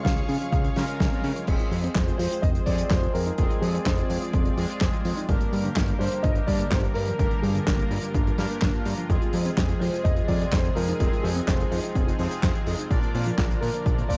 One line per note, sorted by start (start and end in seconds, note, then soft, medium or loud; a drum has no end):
0.00 0.74 C#3 medium
0.00 0.74 G#3 medium
0.00 0.74 C#4 medium
0.00 0.74 F4 medium
0.00 0.74 G#4 loud
0.00 1.46 G#4 medium
0.00 1.46 C#5 medium
0.00 1.46 F5 medium
0.00 0.49 F5 loud
0.00 1.46 C#6 medium
0.05 0.22 C#2 medium
0.05 0.10 G#4 loud
0.05 kick loud
0.05 snare loud
0.05 closed hi-hat medium
0.17 0.25 C#4 medium
0.17 closed hi-hat soft
0.29 0.37 C#3 medium
0.29 0.34 C#4 loud
0.29 open hi-hat loud
0.41 0.49 C#4 medium
0.41 closed hi-hat medium
0.51 0.70 C#2 medium
0.51 0.64 G#3 medium
0.51 1.19 F5 medium
0.51 kick loud
0.51 closed hi-hat medium
0.64 0.73 C#4 medium
0.64 closed hi-hat soft
0.76 1.09 C#3 loud
0.76 0.85 C#3 loud
0.76 1.09 G#3 medium
0.76 1.09 C#4 medium
0.76 1.09 F4 medium
0.76 0.88 G4 medium
0.76 1.09 A#4 loud
0.76 snare medium
0.76 open hi-hat loud
0.88 1.00 C#5 medium
0.88 closed hi-hat medium
1.00 1.09 C#2 medium
1.00 1.12 C#4 medium
1.00 kick loud
1.00 snare loud
1.00 closed hi-hat medium
1.12 1.45 C#3 medium
1.12 1.45 G#3 medium
1.12 1.20 C4 loud
1.12 1.45 C#4 medium
1.12 1.45 F4 medium
1.12 1.45 A#4 medium
1.12 closed hi-hat soft
1.24 1.33 C#3 medium
1.24 1.32 C#4 medium
1.24 open hi-hat medium
1.36 1.41 C#5 loud
1.36 closed hi-hat medium
1.47 1.56 F1 medium
1.47 5.25 F3 medium
1.47 2.64 G#3 medium
1.47 5.25 G#3 medium
1.47 2.64 C4 medium
1.47 5.25 C4 medium
1.47 2.64 F4 medium
1.47 1.53 F4 medium
1.47 2.64 G#4 loud
1.47 5.25 G#4 medium
1.47 3.36 C5 medium
1.47 kick loud
1.47 closed hi-hat medium
1.47 crash medium
1.59 1.65 F4 medium
1.59 closed hi-hat soft
1.71 1.89 F2 loud
1.71 1.77 G4 medium
1.71 open hi-hat loud
1.84 1.92 C4 loud
1.84 closed hi-hat medium
1.95 2.13 F1 loud
1.95 2.00 C5 loud
1.95 kick loud
1.95 snare loud
1.95 clap loud
1.95 closed hi-hat medium
2.08 2.16 F4 medium
2.08 closed hi-hat soft
2.18 2.28 F2 medium
2.18 2.24 F4 loud
2.18 2.41 C5 loud
2.18 open hi-hat loud
2.31 2.39 F4 medium
2.31 closed hi-hat medium
2.42 2.60 F1 medium
2.42 2.54 C4 medium
2.42 2.47 D#5 loud
2.42 kick loud
2.42 closed hi-hat medium
2.55 2.63 F4 medium
2.55 closed hi-hat soft
2.66 2.84 F2 medium
2.66 3.36 G#3 medium
2.66 3.36 C4 medium
2.66 2.75 F4 medium
2.66 3.36 F4 medium
2.66 3.36 G#4 medium
2.66 2.91 D5 loud
2.66 kick medium
2.66 open hi-hat loud
2.78 2.84 G#4 medium
2.78 closed hi-hat medium
2.89 3.08 F1 loud
2.89 3.15 C5 loud
2.89 2.96 C5 loud
2.89 kick loud
2.89 snare loud
2.89 clap loud
2.89 closed hi-hat medium
3.03 3.08 F3 medium
3.03 closed hi-hat soft
3.13 3.32 F2 medium
3.13 3.20 F4 loud
3.13 3.63 A#4 loud
3.13 open hi-hat loud
3.26 3.35 D#4 medium
3.26 closed hi-hat medium
3.38 3.47 F1 loud
3.38 4.55 G#3 medium
3.38 4.55 C4 medium
3.38 4.55 F4 medium
3.38 3.43 F4 medium
3.38 4.55 G#4 loud
3.38 5.27 D5 medium
3.38 kick loud
3.38 closed hi-hat medium
3.50 3.55 F4 medium
3.50 closed hi-hat soft
3.61 3.79 F2 loud
3.61 3.67 G4 medium
3.61 3.86 G#4 medium
3.61 open hi-hat loud
3.74 3.82 C4 loud
3.74 closed hi-hat medium
3.85 4.03 F1 loud
3.85 5.00 C5 medium
3.85 3.91 C5 loud
3.85 kick loud
3.85 snare loud
3.85 clap loud
3.85 closed hi-hat medium
3.97 4.06 F4 medium
3.97 closed hi-hat soft
4.10 4.18 F2 medium
4.10 4.15 F4 loud
4.10 open hi-hat loud
4.22 4.30 F4 medium
4.22 closed hi-hat medium
4.33 4.51 F1 loud
4.33 4.45 C4 medium
4.33 kick loud
4.33 closed hi-hat medium
4.45 4.54 F4 medium
4.45 closed hi-hat medium
4.57 4.66 F2 loud
4.57 5.26 G#3 loud
4.57 5.26 C4 medium
4.57 4.66 F4 medium
4.57 5.26 F4 medium
4.57 5.26 G#4 loud
4.57 open hi-hat loud
4.70 4.74 G#4 medium
4.70 closed hi-hat medium
4.81 4.90 F1 medium
4.81 4.86 C5 loud
4.81 kick loud
4.81 snare loud
4.81 clap medium
4.81 closed hi-hat medium
4.93 4.98 F3 medium
4.93 closed hi-hat soft
5.05 5.14 F2 medium
5.05 5.10 F4 loud
5.05 open hi-hat medium
5.17 5.25 D#4 medium
5.17 closed hi-hat medium
5.29 5.37 G1 loud
5.29 6.45 G2 medium
5.29 9.06 D3 medium
5.29 9.06 G3 medium
5.29 5.34 G3 medium
5.29 9.06 A#3 medium
5.29 6.45 A#3 medium
5.29 6.45 D4 medium
5.29 7.17 G4 medium
5.29 6.45 G4 medium
5.29 9.06 A#4 loud
5.29 6.45 A#4 medium
5.29 kick loud
5.29 closed hi-hat medium
5.41 5.46 G3 medium
5.41 closed hi-hat soft
5.53 5.70 G2 loud
5.53 5.58 G3 medium
5.53 open hi-hat loud
5.65 5.73 D3 loud
5.65 closed hi-hat medium
5.76 5.93 G1 medium
5.76 5.81 D4 loud
5.76 kick loud
5.76 snare loud
5.76 clap loud
5.76 closed hi-hat medium
5.88 5.97 G3 medium
5.88 closed hi-hat medium
5.99 6.09 G2 medium
5.99 6.05 G3 loud
5.99 6.24 C5 loud
5.99 open hi-hat loud
6.12 6.21 G3 medium
6.12 closed hi-hat medium
6.23 6.41 G1 medium
6.23 6.35 D3 medium
6.23 6.48 D#5 loud
6.23 kick loud
6.23 closed hi-hat medium
6.35 6.44 G3 medium
6.35 closed hi-hat medium
6.47 6.65 G2 medium
6.47 7.16 G2 medium
6.47 6.56 G3 medium
6.47 7.16 A#3 medium
6.47 7.16 D4 medium
6.47 7.16 G4 medium
6.47 7.16 A#4 medium
6.47 6.72 D5 loud
6.47 kick medium
6.47 open hi-hat loud
6.59 6.65 A#3 medium
6.59 closed hi-hat medium
6.70 6.89 G1 loud
6.70 6.77 D4 loud
6.70 6.76 C5 loud
6.70 kick loud
6.70 snare loud
6.70 clap loud
6.70 closed hi-hat medium
6.84 6.89 G2 medium
6.84 closed hi-hat soft
6.94 7.13 G2 medium
6.94 7.00 G3 loud
6.94 7.39 A#4 loud
6.94 open hi-hat loud
7.07 7.16 F3 medium
7.07 closed hi-hat medium
7.19 7.28 G1 medium
7.19 8.36 G2 medium
7.19 7.24 G3 medium
7.19 8.36 A#3 medium
7.19 8.36 D4 medium
7.19 10.96 F4 medium
7.19 8.35 G4 medium
7.19 8.36 A#4 loud
7.19 kick loud
7.19 closed hi-hat medium
7.31 7.36 G3 medium
7.31 closed hi-hat soft
7.42 7.60 G2 loud
7.42 7.48 G3 medium
7.42 7.65 G#4 medium
7.42 open hi-hat medium
7.55 7.63 D3 loud
7.55 closed hi-hat medium
7.66 7.84 G1 loud
7.66 7.72 D4 loud
7.66 8.81 A#4 medium
7.66 kick loud
7.66 snare loud
7.66 clap loud
7.66 closed hi-hat medium
7.79 7.87 G3 medium
7.79 closed hi-hat medium
7.91 7.99 G2 medium
7.91 7.96 G3 loud
7.91 open hi-hat loud
8.03 8.11 G3 medium
8.03 closed hi-hat medium
8.14 8.32 G1 medium
8.14 8.26 D3 medium
8.14 kick loud
8.14 closed hi-hat medium
8.27 8.35 G3 medium
8.27 closed hi-hat soft
8.38 8.47 G2 loud
8.38 9.07 G2 loud
8.38 8.47 G3 medium
8.38 9.07 A#3 medium
8.38 9.07 D4 medium
8.38 9.07 G4 medium
8.38 9.07 A#4 loud
8.38 snare medium
8.38 open hi-hat loud
8.50 8.55 A#3 medium
8.50 closed hi-hat medium
8.62 8.71 G1 medium
8.62 8.67 D4 loud
8.62 kick loud
8.62 snare loud
8.62 clap loud
8.62 closed hi-hat medium
8.74 8.79 G2 medium
8.74 closed hi-hat soft
8.85 8.95 G2 medium
8.85 8.91 G3 loud
8.85 open hi-hat loud
8.97 9.06 F3 medium
8.97 closed hi-hat medium
9.10 9.18 F1 loud
9.10 12.87 C3 medium
9.10 14.17 F3 medium
9.10 12.87 G#3 medium
9.10 10.26 G#3 medium
9.10 10.26 C4 medium
9.10 9.15 F4 medium
9.10 10.26 F4 medium
9.10 12.87 G#4 medium
9.10 10.26 G#4 loud
9.10 kick loud
9.10 closed hi-hat medium
9.22 9.27 F4 medium
9.22 closed hi-hat soft
9.33 9.51 F2 loud
9.33 9.39 G4 medium
9.33 open hi-hat loud
9.45 9.54 C4 loud
9.45 closed hi-hat medium
9.57 9.74 F1 loud
9.57 9.62 C5 loud
9.57 kick loud
9.57 snare loud
9.57 clap loud
9.57 closed hi-hat medium
9.69 9.78 F4 medium
9.69 closed hi-hat medium
9.80 9.90 F2 medium
9.80 9.86 F4 loud
9.80 10.05 C5 loud
9.80 open hi-hat loud
9.93 10.01 F4 medium
9.93 closed hi-hat medium
10.04 10.22 F1 medium
10.04 10.16 C4 medium
10.04 10.29 D#5 loud
10.04 kick loud
10.04 closed hi-hat medium
10.16 10.25 F4 medium
10.16 closed hi-hat soft
10.28 10.46 F2 medium
10.28 10.97 G#3 medium
10.28 10.97 C4 medium
10.28 10.37 F4 medium
10.28 10.97 F4 medium
10.28 10.97 G#4 medium
10.28 10.53 D5 loud
10.28 kick medium
10.28 open hi-hat loud
10.41 10.46 G#4 medium
10.41 closed hi-hat medium
10.51 10.70 F1 loud
10.51 10.77 C5 loud
10.51 10.58 C5 loud
10.51 kick loud
10.51 snare loud
10.51 clap loud
10.51 closed hi-hat medium
10.64 10.69 F3 medium
10.64 closed hi-hat soft
10.75 10.93 F2 medium
10.75 10.81 F4 loud
10.75 11.25 A#4 loud
10.75 open hi-hat loud
10.88 10.97 D#4 medium
10.88 closed hi-hat medium
11.00 11.09 F1 loud
11.00 12.16 G#3 loud
11.00 12.17 C4 medium
11.00 12.89 D#4 medium
11.00 11.05 F4 medium
11.00 12.16 F4 medium
11.00 12.16 G#4 loud
11.00 kick loud
11.00 closed hi-hat medium
11.12 11.17 F4 medium
11.12 closed hi-hat soft
11.23 11.41 F2 loud
11.23 11.29 G4 medium
11.23 11.28 G#4 medium
11.23 open hi-hat loud
11.36 11.44 C4 loud
11.36 closed hi-hat medium
11.47 11.65 F1 loud
11.47 12.62 C5 medium
11.47 11.53 C5 loud
11.47 kick loud
11.47 snare loud
11.47 clap medium
11.47 closed hi-hat medium
11.60 11.68 F4 medium
11.60 closed hi-hat soft
11.72 11.80 F2 medium
11.72 11.77 F4 loud
11.72 open hi-hat loud
11.84 11.92 F4 medium
11.84 closed hi-hat medium
11.95 12.13 F1 medium
11.95 12.07 C4 medium
11.95 kick loud
11.95 closed hi-hat medium
12.07 12.16 F4 medium
12.07 closed hi-hat soft
12.19 12.28 F2 loud
12.19 12.88 G#3 loud
12.19 12.88 C4 loud
12.19 12.28 F4 medium
12.19 12.88 F4 medium
12.19 12.88 G#4 loud
12.19 open hi-hat loud
12.31 12.36 G#4 medium
12.31 closed hi-hat medium
12.43 12.52 F1 medium
12.43 12.48 C5 loud
12.43 kick loud
12.43 snare loud
12.43 clap loud
12.43 closed hi-hat medium
12.55 12.60 F3 medium
12.55 closed hi-hat soft
12.67 12.75 F2 medium
12.67 12.72 F4 loud
12.67 open hi-hat loud
12.79 12.87 D#4 medium
12.79 closed hi-hat medium
12.91 12.99 A#1 loud
12.91 14.07 A#2 medium
12.91 14.17 D3 medium
12.91 12.96 A#3 medium
12.91 14.17 A#3 medium
12.91 14.07 D4 medium
12.91 14.07 F4 medium
12.91 14.17 F4 medium
12.91 14.07 A#4 medium
12.91 14.17 A#4 loud
12.91 14.07 D5 loud
12.91 kick loud
12.91 closed hi-hat medium
13.03 13.08 A#3 medium
13.03 closed hi-hat soft
13.15 13.32 A#2 loud
13.15 13.19 C4 medium
13.15 open hi-hat loud
13.26 13.35 F3 loud
13.26 closed hi-hat medium
13.38 13.55 A#1 loud
13.38 13.43 F4 loud
13.38 kick loud
13.38 snare loud
13.38 clap loud
13.38 closed hi-hat medium
13.50 13.59 A#3 medium
13.50 closed hi-hat soft
13.61 13.71 A#2 medium
13.61 13.67 A#3 loud
13.61 14.11 A#4 loud
13.61 open hi-hat loud
13.74 13.82 A#3 medium
13.74 closed hi-hat medium
13.86 14.03 A#1 medium
13.86 13.97 F3 medium
13.86 kick loud
13.86 closed hi-hat medium
13.98 14.06 A#3 medium
13.98 closed hi-hat soft
14.08 14.17 A#2 medium
14.08 14.17 A#3 medium
14.08 14.17 D4 medium
14.08 14.17 F4 medium
14.08 14.17 A#4 medium
14.08 14.17 D5 loud
14.08 14.17 D5 medium
14.08 kick medium
14.08 open hi-hat loud